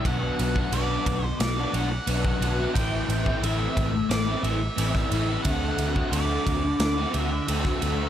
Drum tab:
RD |x-x-x-x-x-x-x-x-|x-x-x-x-x-x-x-x-|x-x-x-x-x-x-x-x-|
SD |--------o-------|--------o----o--|--------o----o--|
BD |o--o--o------o--|o--o--o------o--|o--o--o------o--|